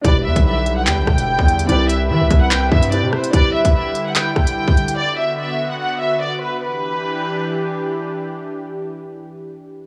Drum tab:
HH |x--x--x-x--x--xx|x-x---x-x--xx--x|x--x--x-x--x--xx|----------------|
CP |--------x-------|--------x-------|--------x-------|----------------|
SD |----------r-----|--------------r-|----------r-----|----------------|
BD |o--o------o--o--|------o---o-----|o--o------o--o--|----------------|

HH |----------------|----------------|
CP |----------------|----------------|
SD |----------------|----------------|
BD |----------------|----------------|